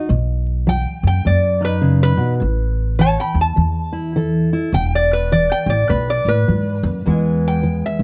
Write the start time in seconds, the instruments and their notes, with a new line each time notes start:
0.09 upright bass B1, steel-string acoustic guitar B2
0.67 steel-string acoustic guitar F#3, resonator guitar played with a steel bar G5
1.03 upright bass F#2, resonator guitar played with a steel bar G5
1.25 steel-string acoustic guitar F#2, upright bass F#2, resonator guitar played with a steel bar D5
1.61 steel-string acoustic guitar D#4, resonator guitar played with a steel bar B4
1.82 steel-string acoustic guitar C#3
2.03 resonator guitar played with a steel bar B4
2.17 steel-string acoustic guitar B2
2.40 upright bass A1, steel-string acoustic guitar A2
2.99 steel-string acoustic guitar E3, resonator guitar played with a steel bar C#5 A5
3.20 resonator guitar played with a steel bar G5 B5
3.34 upright bass E2
3.41 resonator guitar played with a steel bar A5
3.56 upright bass E2, steel-string acoustic guitar E3
3.93 steel-string acoustic guitar E4
4.16 steel-string acoustic guitar E3 A4
4.53 steel-string acoustic guitar E4
4.73 upright bass E1, steel-string acoustic guitar E2, resonator guitar played with a steel bar G5
4.95 resonator guitar played with a steel bar D5
5.13 resonator guitar played with a steel bar B4
5.32 steel-string acoustic guitar E3, resonator guitar played with a steel bar D5
5.52 resonator guitar played with a steel bar G5
5.66 upright bass A1, resonator guitar played with a steel bar D5
5.89 upright bass B1, steel-string acoustic guitar B2, resonator guitar played with a steel bar B4
6.10 resonator guitar played with a steel bar D5
6.25 upright bass A2, resonator guitar played with a steel bar B4
6.48 upright bass G#2, steel-string acoustic guitar F#3
6.83 upright bass F#2
7.06 steel-string acoustic guitar E2 E3 G#3 B3 G#4, upright bass E2
7.48 resonator guitar played with a steel bar G5
7.63 steel-string acoustic guitar E3
7.86 resonator guitar played with a steel bar E5
7.99 upright bass B1